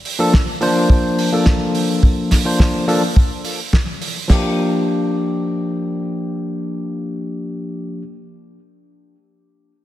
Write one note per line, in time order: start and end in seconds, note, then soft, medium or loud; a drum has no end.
0.05 open hi-hat medium
0.19 0.32 F3 medium
0.19 0.32 A#3 medium
0.19 0.33 D4 medium
0.19 0.33 A4 medium
0.33 kick loud
0.33 snare loud
0.61 1.29 F3 medium
0.61 1.29 A#3 medium
0.61 1.29 D4 medium
0.61 1.30 C5 loud
0.61 open hi-hat medium
0.90 kick loud
1.19 open hi-hat medium
1.32 2.42 F3 medium
1.32 2.42 A#3 medium
1.32 2.42 D4 medium
1.32 2.43 A4 medium
1.46 kick loud
1.46 snare loud
1.75 open hi-hat medium
2.03 kick loud
2.31 kick medium
2.31 snare medium
2.31 open hi-hat loud
2.45 2.84 F3 medium
2.45 2.84 A#3 medium
2.45 2.85 D4 medium
2.45 2.85 C5 medium
2.60 kick medium
2.60 snare loud
2.87 3.01 F3 medium
2.87 3.01 A#3 medium
2.87 3.02 D4 medium
2.87 3.02 A4 medium
2.87 open hi-hat medium
3.16 kick loud
3.45 open hi-hat medium
3.73 kick loud
3.73 snare loud
4.02 open hi-hat medium
4.28 8.01 F3 medium
4.28 8.02 A#3 medium
4.28 8.02 D4 medium
4.28 8.03 G4 medium
4.28 kick medium
4.28 snare medium
4.28 crash medium